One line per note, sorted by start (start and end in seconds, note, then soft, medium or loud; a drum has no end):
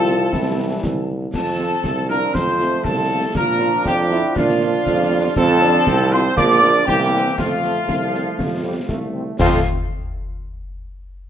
0.00 0.27 C2 medium
0.00 0.29 F3 medium
0.00 0.31 C4 medium
0.00 1.04 C4 medium
0.00 0.29 F4 medium
0.00 1.08 A4 loud
0.00 1.08 A5 loud
0.07 snare medium
0.32 0.77 C2 medium
0.32 1.08 E3 medium
0.32 1.08 G3 medium
0.32 1.04 C4 medium
0.32 1.08 E4 medium
0.32 concert bass drum loud
0.32 snare medium
0.83 1.28 C2 medium
0.83 concert bass drum medium
0.83 snare medium
1.33 1.76 F2 medium
1.33 3.31 F3 medium
1.33 3.31 C4 medium
1.33 2.05 A4 loud
1.33 2.05 A5 medium
1.33 concert bass drum medium
1.33 snare medium
1.33 crash medium
1.59 1.68 F3 medium
1.59 1.68 C4 medium
1.59 1.68 F4 medium
1.59 snare medium
1.84 2.26 C2 medium
1.84 2.08 A3 medium
1.84 concert bass drum medium
1.84 snare medium
2.09 2.18 F3 medium
2.09 2.18 C4 medium
2.09 2.37 D4 medium
2.09 2.18 F4 medium
2.09 2.32 A#4 loud
2.09 2.32 A#5 medium
2.09 snare medium
2.33 2.76 F2 medium
2.33 2.59 C4 medium
2.33 2.85 C5 loud
2.33 2.81 C6 medium
2.33 concert bass drum medium
2.33 snare medium
2.47 snare medium
2.59 2.69 F3 medium
2.59 3.37 A3 medium
2.59 2.68 C4 medium
2.59 2.68 F4 medium
2.59 snare medium
2.84 3.26 C2 medium
2.84 3.35 A4 loud
2.84 3.31 A5 loud
2.84 concert bass drum medium
2.84 snare medium
3.10 3.19 F3 medium
3.10 3.19 C4 medium
3.10 3.19 F4 medium
3.34 3.77 A#2 medium
3.34 5.32 F3 medium
3.34 3.63 A#3 medium
3.34 5.32 D4 medium
3.34 3.82 A#4 loud
3.34 3.82 A#5 medium
3.34 concert bass drum medium
3.34 snare medium
3.34 crash soft
3.60 3.69 F3 medium
3.60 3.69 D4 medium
3.60 3.85 D4 medium
3.60 3.69 F4 medium
3.60 snare medium
3.85 4.24 F2 medium
3.85 3.97 F4 medium
3.85 4.32 G4 loud
3.85 4.36 G5 loud
3.85 concert bass drum medium
3.85 snare medium
4.11 4.20 F3 medium
4.11 4.20 D4 medium
4.11 4.35 E4 loud
4.11 4.20 F4 medium
4.11 snare medium
4.36 4.78 A#2 medium
4.36 5.33 D4 loud
4.36 5.37 F4 loud
4.36 5.33 F5 medium
4.36 concert bass drum loud
4.36 snare medium
4.49 snare medium
4.60 4.70 F3 medium
4.60 4.71 D4 medium
4.60 4.70 F4 medium
4.60 snare medium
4.86 5.28 F2 loud
4.86 concert bass drum medium
4.86 snare medium
5.11 5.20 F3 medium
5.11 5.20 D4 medium
5.11 5.20 F4 medium
5.36 5.78 F2 loud
5.36 6.33 F3 loud
5.36 5.64 C4 loud
5.36 6.34 C4 loud
5.36 6.08 A4 loud
5.36 6.08 A5 loud
5.36 concert bass drum loud
5.36 snare medium
5.36 crash soft
5.62 5.71 F3 medium
5.62 5.71 C4 medium
5.62 5.86 D4 loud
5.62 5.72 F4 medium
5.62 snare medium
5.86 6.29 C2 loud
5.86 6.39 C4 loud
5.86 concert bass drum medium
5.86 snare medium
6.11 6.22 F3 medium
6.11 6.22 C4 medium
6.11 6.22 F4 medium
6.11 6.37 C5 loud
6.11 6.18 C6 loud
6.11 snare medium
6.36 6.79 A#1 loud
6.36 6.83 F3 loud
6.36 6.87 A#3 medium
6.36 6.63 A#3 loud
6.36 6.84 D5 loud
6.36 6.84 D6 loud
6.36 concert bass drum medium
6.36 snare medium
6.50 snare medium
6.62 6.72 F3 medium
6.62 6.72 A#3 medium
6.62 6.88 D4 loud
6.62 6.72 F4 medium
6.62 snare medium
6.87 7.29 C2 loud
6.87 7.38 E3 medium
6.87 7.35 A#3 medium
6.87 7.37 C4 medium
6.87 7.34 G4 loud
6.87 7.38 G5 loud
6.87 concert bass drum medium
6.87 snare medium
7.13 7.22 E3 medium
7.13 7.22 A#3 medium
7.13 7.22 C4 medium
7.37 7.80 F2 medium
7.37 7.83 F3 medium
7.37 7.83 A3 medium
7.37 9.10 A3 medium
7.37 9.10 F4 loud
7.37 9.10 F5 medium
7.37 concert bass drum medium
7.37 snare medium
7.37 crash soft
7.63 7.72 F3 medium
7.63 7.72 A3 medium
7.63 7.72 C4 medium
7.63 snare medium
7.88 8.30 C2 medium
7.88 8.60 F3 medium
7.88 concert bass drum medium
7.88 snare medium
8.13 8.22 F3 medium
8.13 8.22 A3 medium
8.13 8.22 C4 medium
8.13 snare medium
8.38 8.80 F2 medium
8.38 concert bass drum medium
8.38 snare medium
8.63 8.72 F3 medium
8.63 8.75 G3 medium
8.63 8.72 A3 medium
8.63 8.72 C4 medium
8.88 9.31 C2 medium
8.88 9.35 A3 medium
8.88 concert bass drum medium
8.88 snare medium
9.14 9.23 F3 medium
9.14 9.23 A3 medium
9.14 9.23 C4 medium
9.38 9.60 F2 loud
9.38 9.60 F3 medium
9.38 9.61 F3 medium
9.38 9.60 A3 medium
9.38 9.60 C4 medium
9.38 9.60 F4 loud
9.38 9.67 F5 loud
9.38 concert bass drum loud
9.38 snare loud
9.38 crash medium